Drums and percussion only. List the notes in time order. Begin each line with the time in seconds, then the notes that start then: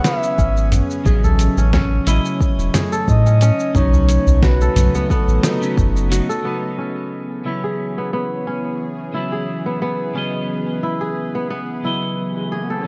0.04 snare, closed hi-hat, shaker
0.23 shaker
0.39 kick, shaker
0.57 shaker
0.72 closed hi-hat, mid tom, shaker
0.91 shaker
1.06 kick, shaker
1.24 udu, shaker
1.39 closed hi-hat, shaker
1.58 shaker
1.73 kick, snare, mid tom, shaker
2.07 closed hi-hat, shaker
2.25 shaker
2.41 kick, shaker
2.59 shaker
2.74 snare, closed hi-hat, mid tom, shaker
2.92 shaker
3.08 kick, shaker
3.26 shaker
3.41 closed hi-hat, shaker
3.60 shaker
3.75 kick, mid tom, shaker
3.93 udu, shaker
4.09 closed hi-hat, shaker
4.27 udu, shaker
4.43 kick, snare, shaker
4.61 shaker
4.76 closed hi-hat, mid tom, shaker
4.95 udu, shaker
5.10 kick, shaker
5.29 shaker
5.43 snare, closed hi-hat, shaker
5.62 shaker
5.77 kick, mid tom, shaker
5.96 shaker
6.12 closed hi-hat, shaker
6.30 shaker